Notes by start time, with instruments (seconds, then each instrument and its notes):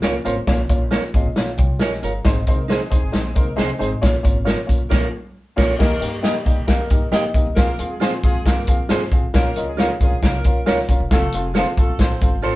0.02 upright bass C#2, upright piano A#3 C#4 F4 C#5, clean electric guitar F4 A#4 C#5, snare, closed hi-hat
0.25 upright bass G#1, upright piano A#3 C#4 F4 C5, clean electric guitar F4 A#4 C#5, closed hi-hat
0.37 upright bass A1
0.47 upright bass A#1, upright piano A#3 C#4 F4 C#5, kick, snare, closed hi-hat
0.69 upright bass A#1, upright piano A#3 C#4 F4 C#5, kick, closed hi-hat
0.91 upright piano A#3 C#4 F4 C#5, clean electric guitar F4 A#4 C#5, snare, closed hi-hat
1.14 upright bass G#1, upright piano A#3 C#4 F4 G#4 D#5, kick, closed hi-hat
1.25 upright bass A#1
1.36 upright bass A#1, upright piano A#3 C#4 F4 C#5 F5, snare, closed hi-hat
1.57 upright bass C2, upright piano F4 C#5 G5, kick, closed hi-hat
1.79 upright bass A#1, clean electric guitar F4 A#4 C#5, upright piano G4 D#5 G#5, snare, closed hi-hat
1.92 snare
2.03 upright bass G1, clean electric guitar F4 A#4 C#5, upright piano G#4 F5 A#5, closed hi-hat
2.25 upright bass G#1, upright piano G#3 C4 D#4 C5, kick, snare, closed hi-hat
2.47 upright bass C2, upright piano G#3 C4 D#4 C5, horn section A#3 A#4, kick, closed hi-hat
2.68 horn section G#3 G#4, upright piano G#3 C4 D#4 C5, clean electric guitar D#4 G#4 C5, snare, closed hi-hat
2.90 upright bass D#2, horn section G#3 G#4, upright piano G#3 C4 D#4 C5, kick, closed hi-hat
3.02 upright bass G#1
3.12 upright bass A#1, upright piano G#3 C4 D#4 C5, snare, closed hi-hat
3.35 upright bass C2, upright piano G#3 C4 D#4 C5, horn section A#3 A#4, kick, closed hi-hat
3.56 upright bass C2, upright piano G#3 C4 D#4 C5, clean electric guitar D#4 G#4 C5, snare, closed hi-hat
3.79 upright bass G#1, upright piano G#3 C4 D#4 C5, clean electric guitar D#4 G#4 C5, closed hi-hat
3.92 upright bass A1
4.01 upright bass A#1, upright piano A#3 C#4 F4 C#5, kick, snare, closed hi-hat
4.23 upright bass G#1, upright piano A#3 C#4 F4 C#5, kick, closed hi-hat
4.45 upright piano A#3 C#4 F4 C#5, clean electric guitar F4 A#4 C#5, snare, closed hi-hat
4.67 upright bass A#1, upright piano A#3 C#4 F4 C#5, kick, closed hi-hat
4.81 upright bass A#1
4.89 upright bass A#1, horn section A#3 A#4, upright piano A#3 C#4 F4 C#5, clean electric guitar F4 A#4 C#5, kick, snare, crash
5.56 upright bass A#1, horn section A#3 A#4, upright piano A#3 C#4 F4 C#5, clean electric guitar F4 A#4 C#5, kick, snare, crash
5.79 upright bass D#2, upright piano A#3 D#4 G4 D#5, horn section A#3 A#4, kick, snare, crash
6.00 upright bass G2, upright piano A#3 D#4 G4 A#4, closed hi-hat
6.12 horn section G3 G4
6.22 horn section G3 G4, upright piano A#3 D#4 G4 D#5, clean electric guitar G4 A#4 D#5, snare, closed hi-hat
6.45 upright bass A#2, horn section G3 G4, upright piano A#3 D#4 G4 D#5, kick, closed hi-hat
6.57 upright bass D#2
6.67 upright bass F2, horn section A#3 A#4, upright piano A#3 D#4 G4 F5, kick, snare, closed hi-hat
6.90 upright bass G2, upright piano A#3 D#4 G4 D#5, kick, closed hi-hat
7.11 upright bass G2, upright piano A#3 D#4 G4 D#5, clean electric guitar G4 A#4 D#5, snare, closed hi-hat
7.34 upright bass D#2, upright piano A#3 D#4 G4 D#5, kick, closed hi-hat
7.46 upright bass E2
7.55 upright bass F2, horn section A#3 A#4, upright piano C4 F4 G#4 F5, kick, snare, closed hi-hat
7.79 upright bass D#2, upright piano C4 F4 G#4 F5, closed hi-hat
7.91 horn section G#3 G#4
8.00 horn section G#3 G#4, upright piano C4 F4 G#4 F5, clean electric guitar F4 G#4 C5, snare, closed hi-hat
8.24 upright bass F2, horn section G#3 G#4, upright piano C4 F4 G#4 F5, kick, closed hi-hat
8.34 upright bass F2
8.46 upright bass G2, horn section A#3 A#4, upright piano C4 F4 G#4 F5, kick, snare, closed hi-hat
8.67 upright bass F2, upright piano C4 F4 G#4 F5, kick, closed hi-hat
8.89 upright bass G2, upright piano C4 F4 G#4 C5, clean electric guitar F4 G#4 C5, snare, closed hi-hat
9.01 snare
9.12 upright bass A1, upright piano C4 F4 G#4 F5, kick, closed hi-hat
9.34 upright bass A#1, horn section A#3 A#4, upright piano C#4 F4 A#4 F5, kick, snare, closed hi-hat
9.56 upright bass C#2, upright piano C#4 F4 A#4 D#5, closed hi-hat
9.68 horn section G#3 G#4
9.77 horn section G#3 G#4, upright piano C#4 F4 A#4 F5, clean electric guitar F4 A#4 C#5, snare, closed hi-hat
10.01 upright bass F2, horn section G#3 G#4, upright piano C#4 F4 A#4 F5, kick, closed hi-hat
10.12 upright bass A#1
10.22 upright bass C2, horn section A#3 A#4, upright piano C#4 F4 A#4 F5, kick, snare, closed hi-hat
10.44 upright piano C#4 F4 A#4 F5, kick, closed hi-hat
10.66 upright bass C#2, upright piano C#4 F4 A#4 F5, clean electric guitar F4 A#4 C#5, snare, closed hi-hat
10.79 snare
10.89 upright bass D#1, upright piano C#4 F4 A#4 F5, kick, closed hi-hat
11.00 upright bass E1
11.10 upright bass F1, horn section A3 A4, upright piano C4 F4 A4 F5, kick, snare, closed hi-hat
11.32 upright bass F1, upright piano C4 F4 A4 F5, closed hi-hat
11.45 horn section G#3 G#4
11.54 horn section G#3 G#4, upright piano C4 F4 A4 F5, clean electric guitar F4 A4 C5, snare, closed hi-hat
11.77 upright bass G1, horn section A3 A4, upright piano C4 F4 A4 F5, kick, closed hi-hat
11.88 upright bass G1
11.99 upright bass A1, upright piano C4 F4 A4 F5, horn section C4 C5, kick, snare, closed hi-hat
12.21 upright bass G1, upright piano C4 F4 A4 F5, kick, closed hi-hat
12.42 upright bass A1, upright piano C4 F4 A4 C5, clean electric guitar F4 A4 C5